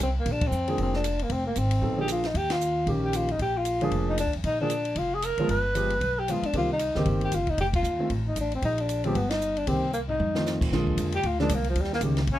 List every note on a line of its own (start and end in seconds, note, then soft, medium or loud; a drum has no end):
0.00 0.24 C2 medium
0.00 0.09 C4 medium
0.20 0.33 A#3 medium
0.26 0.50 A#1 medium
0.26 kick soft
0.26 ride medium
0.32 0.49 D4 medium
0.41 kick medium
0.41 ride medium
0.47 0.81 C4 medium
0.51 0.76 F2 medium
0.51 hi-hat pedal soft
0.68 1.03 F3 medium
0.68 1.03 A#3 medium
0.68 1.03 D4 medium
0.68 1.03 G#4 medium
0.68 ride soft
0.78 1.28 F1 medium
0.78 kick soft
0.78 ride soft
0.82 0.95 C4 medium
0.94 1.24 D4 medium
0.94 snare soft
1.04 hi-hat pedal medium
1.04 ride medium
1.19 1.33 A#3 medium
1.19 ride soft
1.29 1.54 F1 medium
1.29 1.46 C4 medium
1.29 kick soft
1.29 ride medium
1.47 1.59 A#3 medium
1.56 1.81 G#1 medium
1.56 1.99 C4 medium
1.56 hi-hat pedal medium
1.56 ride medium
1.71 ride medium
1.82 2.32 A#1 medium
1.82 1.96 F#3 medium
1.82 1.96 B3 soft
1.82 1.97 D#4 medium
1.82 1.97 A4 medium
1.82 kick soft
1.97 2.21 F3 medium
1.97 2.21 A#3 soft
1.97 2.21 D4 soft
1.97 2.09 G4 medium
1.97 2.22 G#4 medium
2.08 2.28 F4 medium
2.08 hi-hat pedal medium
2.08 ride medium
2.24 2.39 D#4 medium
2.24 snare soft
2.24 ride soft
2.34 2.84 D#2 medium
2.34 2.54 G4 medium
2.34 kick soft
2.34 ride medium
2.50 2.88 F4 medium
2.50 snare medium
2.50 ride medium
2.61 hi-hat pedal medium
2.87 3.37 A#1 medium
2.87 3.26 D#3 medium
2.87 3.26 A#3 medium
2.87 3.26 C#4 medium
2.87 3.26 G4 medium
2.87 kick soft
2.87 ride soft
3.05 3.18 G4 medium
3.13 3.33 F4 medium
3.13 hi-hat pedal medium
3.13 ride medium
3.29 3.41 D#4 medium
3.29 ride soft
3.39 3.89 A#1 medium
3.39 3.59 G4 medium
3.39 kick soft
3.39 ride medium
3.57 3.93 F4 medium
3.65 hi-hat pedal medium
3.65 ride medium
3.81 4.16 F3 medium
3.81 4.16 A#3 medium
3.81 4.17 D4 medium
3.81 4.17 G#4 medium
3.81 ride soft
3.91 4.24 F1 medium
3.91 kick soft
3.91 ride soft
4.10 4.19 D#4 medium
4.18 4.33 D4 medium
4.18 hi-hat pedal medium
4.18 ride medium
4.26 4.35 D2 soft
4.33 4.43 F2 medium
4.33 ride soft
4.44 4.94 A#1 medium
4.44 4.59 D#4 medium
4.44 kick soft
4.44 ride medium
4.61 4.70 F3 medium
4.61 4.70 A#3 medium
4.61 4.99 D4 medium
4.61 4.71 D4 medium
4.61 4.71 G#4 medium
4.70 hi-hat pedal medium
4.70 ride medium
4.85 ride soft
4.96 5.35 F1 medium
4.96 5.16 F4 medium
4.96 kick soft
4.96 ride soft
5.15 5.26 G#4 medium
5.22 5.50 A#4 medium
5.22 hi-hat pedal medium
5.22 ride medium
5.37 5.48 F3 medium
5.37 5.49 G#3 medium
5.37 5.49 B3 medium
5.37 5.49 F4 medium
5.37 muted upright bass stroke soft
5.37 ride soft
5.48 5.98 G1 medium
5.48 6.20 B4 loud
5.48 kick soft
5.48 ride medium
5.75 5.89 F3 medium
5.75 5.89 G#3 medium
5.75 5.90 B3 medium
5.75 5.90 G4 medium
5.75 hi-hat pedal soft
5.75 ride medium
5.90 ride soft
6.01 6.40 B1 medium
6.01 kick soft
6.01 ride soft
6.19 6.33 G4 medium
6.28 6.42 F3 medium
6.28 6.42 G#3 soft
6.28 6.43 B3 medium
6.28 6.43 F4 medium
6.28 6.47 F4 medium
6.28 hi-hat pedal medium
6.28 ride medium
6.42 6.55 D4 medium
6.42 muted upright bass stroke soft
6.42 ride soft
6.53 6.92 C2 medium
6.53 6.68 D#3 medium
6.53 6.68 A#3 medium
6.53 6.68 C4 medium
6.53 6.70 F4 medium
6.53 6.68 G4 medium
6.53 kick soft
6.53 ride medium
6.73 7.05 D#4 medium
6.79 hi-hat pedal soft
6.79 ride medium
6.95 7.05 C#2 medium
6.95 7.30 D#3 medium
6.95 7.30 A#3 medium
6.95 7.31 C4 medium
6.95 7.31 G4 medium
6.95 snare soft
7.06 7.30 G1 medium
7.06 kick soft
7.06 ride soft
7.21 7.36 G4 medium
7.21 ride soft
7.32 7.56 F#1 medium
7.32 7.52 F4 medium
7.32 hi-hat pedal soft
7.32 ride medium
7.47 7.60 D#4 medium
7.47 kick soft
7.47 ride soft
7.58 7.82 F1 medium
7.58 7.67 G4 loud
7.58 kick soft
7.58 ride medium
7.74 8.09 F4 medium
7.74 kick medium
7.74 ride medium
7.83 8.08 D#2 medium
7.83 hi-hat pedal medium
7.99 8.09 D#3 medium
7.99 8.09 A3 medium
7.99 8.10 C4 medium
7.99 8.10 F4 medium
8.10 8.34 A1 medium
8.10 kick soft
8.10 ride soft
8.28 8.37 D#4 medium
8.36 8.61 A1 medium
8.36 hi-hat pedal medium
8.36 ride medium
8.40 8.53 D4 medium
8.52 8.64 C4 medium
8.52 ride soft
8.62 9.12 A#1 medium
8.62 8.82 D#4 medium
8.62 kick soft
8.62 ride medium
8.78 9.06 D4 medium
8.78 ride soft
8.89 hi-hat pedal soft
8.89 ride medium
9.04 9.15 F3 medium
9.04 9.15 G#3 medium
9.04 9.15 B3 medium
9.04 9.17 C4 medium
9.04 9.15 G4 medium
9.04 ride soft
9.15 9.65 G1 medium
9.15 9.31 B3 medium
9.15 kick soft
9.15 ride soft
9.30 9.59 D#4 medium
9.30 snare medium
9.30 ride medium
9.41 hi-hat pedal medium
9.57 9.69 D4 medium
9.57 ride soft
9.67 10.17 C2 medium
9.67 9.81 D#3 medium
9.67 9.81 A#3 soft
9.67 9.93 C4 medium
9.67 9.82 C4 medium
9.67 9.82 G4 medium
9.67 kick soft
9.67 ride medium
9.93 10.00 A#3 medium
9.93 hi-hat pedal soft
10.09 10.58 D#4 medium
10.09 floor tom soft
10.20 10.58 F2 medium
10.20 high tom medium
10.34 10.69 D#3 medium
10.34 10.70 A3 soft
10.34 10.70 C4 soft
10.34 10.70 F4 medium
10.34 snare medium
10.46 snare medium
10.46 hi-hat pedal soft
10.61 10.71 B1 medium
10.61 kick medium
10.61 crash medium
10.72 10.97 A#1 medium
10.72 11.11 D3 medium
10.72 11.11 F3 medium
10.72 11.11 G#3 medium
10.72 11.11 A#3 medium
10.72 11.11 F4 medium
10.72 kick soft
10.72 snare soft
10.87 kick medium
10.97 11.23 F2 medium
10.97 kick soft
10.97 hi-hat pedal soft
10.97 ride medium
11.12 11.28 G4 medium
11.12 ride soft
11.23 11.49 D2 medium
11.23 11.40 F4 medium
11.23 kick soft
11.23 ride soft
11.39 11.49 D3 medium
11.39 11.49 F3 medium
11.39 11.50 G#3 medium
11.39 11.50 A#3 medium
11.39 11.56 D4 medium
11.39 11.50 D4 medium
11.39 snare soft
11.49 11.75 C2 medium
11.49 kick soft
11.49 hi-hat pedal medium
11.49 ride medium
11.55 11.68 A#3 medium
11.64 ride soft
11.69 11.82 F3 medium
11.76 12.00 D#2 medium
11.76 kick soft
11.76 ride medium
11.81 11.94 G3 medium
11.81 snare soft
11.93 12.00 A#3 medium
11.93 snare soft
12.01 12.27 C#2 medium
12.01 12.16 D#3 medium
12.01 12.16 G3 medium
12.01 12.17 A#3 medium
12.01 12.17 C#4 medium
12.01 12.17 G4 medium
12.01 kick soft
12.01 hi-hat pedal medium
12.01 ride medium
12.17 snare soft
12.17 ride soft
12.27 12.39 A#1 medium
12.27 kick soft
12.27 ride soft
12.32 12.39 C#4 medium